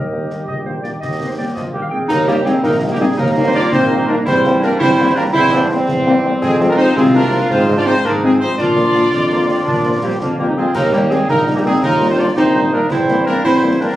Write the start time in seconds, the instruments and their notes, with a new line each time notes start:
Already playing: tuba D#2, euphonium G3, trumpet section G4, woodwind section A#4 D#5
0.12 french horn section D#3 A#3
0.30 french horn section D#3 A#3, snare
0.47 tuba A#1, woodwind section D#5, concert bass drum
0.65 french horn section D#3 A#3, woodwind section C5
0.82 french horn section D#3 A#3, woodwind section D5, snare
1.00 tuba D#2, woodwind section D#5, concert bass drum, snare
1.20 french horn section D#3 A#3
1.27 woodwind section C5
1.36 french horn section D#3 A#3, euphonium G3, woodwind section A#3 D5, trumpet section G4
1.54 tuba A#1, euphonium F3, woodwind section A#3 D#5, trumpet section F4, concert bass drum, snare
1.73 french horn section D#3 A#3, euphonium G3, woodwind section A#3, trumpet section G4
1.81 woodwind section F5
1.89 french horn section D#3 A#3, euphonium G#3, woodwind section C4 G5, trumpet section G#4
2.08 tuba D#2, euphonium A#3, woodwind section D#4, trumpet section A#4, concert bass drum, snare, crash
2.27 euphonium G3, french horn section G3 A#3 D#4, woodwind section A#3, trumpet section G4, snare
2.45 french horn section G3 A#3 D#4, euphonium G#3, woodwind section C4, trumpet section G#4, snare
2.63 tuba A#1, trombone section G3, euphonium A#3, woodwind section D#4, trumpet section A#4, concert bass drum, snare
2.82 french horn section G3 A#3 D#4
2.90 euphonium G3, woodwind section A#3, trumpet section G4
2.99 french horn section G3 A#3 D#4, euphonium G#3, woodwind section C4, trumpet section G#4
3.17 tuba D#2, euphonium A#3, trombone section A#3, woodwind section D#4, trumpet section A#4, concert bass drum, snare
3.36 french horn section G3 A#3 D#4
3.45 euphonium C4, woodwind section D#4, trumpet section C5
3.54 french horn section G3 A#3 D#4, euphonium D4, woodwind section F4, trumpet section D5
3.71 tuba A#1, euphonium C4, woodwind section D#4, trumpet section C5, concert bass drum, snare
3.90 french horn section G3 A#3 D#4
4.08 french horn section G3 A#3 D#4, euphonium A#3, woodwind section D4, trumpet section A#4
4.25 tuba E2, trombone section G3, euphonium C4, woodwind section E4, trumpet section C5, concert bass drum, snare, crash
4.44 french horn section G3 A#3 C4, snare
4.61 french horn section G3 A#3 C4, euphonium A#3, woodwind section D4, trumpet section A#4, snare
4.79 tuba E2, euphonium C4, woodwind section E4, trumpet section C5, concert bass drum, snare
4.99 french horn section G3 A#3 C4
5.15 french horn section G3 A#3 C4, euphonium A#3, woodwind section D4, trumpet section A#4
5.33 tuba E2, euphonium C4, woodwind section E4, trombone section E4, trumpet section C5, concert bass drum, snare
5.51 french horn section G3 A#3 C4, trombone section D4
5.70 french horn section G3 A#3 C4, trombone section C4
5.88 tuba E2, concert bass drum, snare
6.06 french horn section G3 A#3 C4
6.24 french horn section G3 A#3 C4
6.41 tuba F2, euphonium G#3, woodwind section C4, trumpet section G#4, concert bass drum, snare, crash
6.59 french horn section F3 G#3 C4, snare
6.69 euphonium A#3, woodwind section D4, trumpet section A#4
6.77 french horn section F3 G#3 C4, euphonium C4, woodwind section D#4, trumpet section C5, snare
6.95 tuba C2, euphonium G#3, woodwind section C4, trombone section F4, trumpet section G#4, concert bass drum, snare
7.13 french horn section F3 G#3 C4, euphonium A#3, woodwind section D4, trumpet section A#4
7.31 french horn section F3 G#3 C4
7.50 tuba G#2, euphonium C4, woodwind section F4, trumpet section C5, concert bass drum, snare
7.68 french horn section F3 G#3 C4
7.77 euphonium D4, woodwind section F4, trumpet section D5
7.86 french horn section F3 G#3 C4, euphonium C4, woodwind section D#4, trumpet section C5
8.04 tuba G#2, euphonium A#3, woodwind section D4, trombone section D#4, trumpet section A#4, concert bass drum, snare
8.22 french horn section F3 G#3 C4, euphonium G#3, woodwind section C4, trumpet section G#4
8.40 french horn section F3 G#3 C4, euphonium C4, woodwind section D#4, trumpet section C5
8.57 tuba A#2, euphonium D4, trombone section D4, woodwind section F4, trumpet section D5, concert bass drum, snare, crash
8.76 french horn section F3 A#3, snare
8.94 french horn section F3 A#3, snare
9.12 tuba F2, trombone section D4, concert bass drum, snare
9.30 french horn section F3 A#3, trombone section A#3
9.48 french horn section F3 A#3, trombone section C4
9.65 tuba A#2, trombone section D4, concert bass drum, snare
9.85 french horn section F3 A#3
9.94 trombone section A#3
10.02 french horn section F3 A#3, euphonium G3, woodwind section A#3, trombone section C4, trumpet section G4
10.20 tuba F2, euphonium F3, woodwind section A#3, trombone section D4, trumpet section F4, concert bass drum, snare
10.39 french horn section F3 A#3, euphonium G3, woodwind section A#3, trumpet section G4
10.47 trombone section D#4
10.56 french horn section F3 A#3, euphonium G#3, woodwind section C4, trombone section F4, trumpet section G#4
10.74 tuba D#2, euphonium A#3, woodwind section D#4, trumpet section A#4, concert bass drum, snare, crash
10.92 french horn section D#3 G3 A#3, euphonium G3, woodwind section A#3, trumpet section G4, snare
11.10 french horn section D#3 G3 A#3, euphonium G#3, woodwind section C4, trumpet section G#4, snare
11.28 tuba A#1, euphonium A#3, woodwind section D#4, trombone section D#4, trumpet section A#4, concert bass drum, snare
11.47 french horn section D#3 G3 A#3
11.56 euphonium G3, woodwind section A#3, trumpet section G4
11.65 french horn section D#3 G3 A#3, euphonium G#3, woodwind section C4, trumpet section G#4
11.82 tuba D#2, euphonium A#3, woodwind section D#4, trombone section F4, trumpet section A#4, concert bass drum, snare
12.00 french horn section D#3 G3 A#3
12.09 euphonium C4, woodwind section D#4, trumpet section C5
12.18 french horn section D#3 G3 A#3, euphonium D4, woodwind section F4, trumpet section D5
12.35 tuba A#1, euphonium C4, trombone section D#4, woodwind section D#4, trumpet section C5, concert bass drum, snare
12.54 french horn section D#3 G3 A#3
12.72 french horn section D#3 G3 A#3, euphonium A#3, woodwind section D4, trumpet section A#4
12.90 tuba E2, trombone section C4, euphonium C4, woodwind section E4, trumpet section C5, concert bass drum, snare, crash
13.08 french horn section G3 A#3, snare
13.26 french horn section G3 A#3, euphonium A#3, woodwind section D4, trumpet section A#4, snare
13.43 tuba E2, trombone section C4, euphonium C4, woodwind section E4, trumpet section C5, concert bass drum, snare
13.62 french horn section G3 A#3
13.79 french horn section G3 A#3, euphonium A#3, woodwind section D4, trumpet section A#4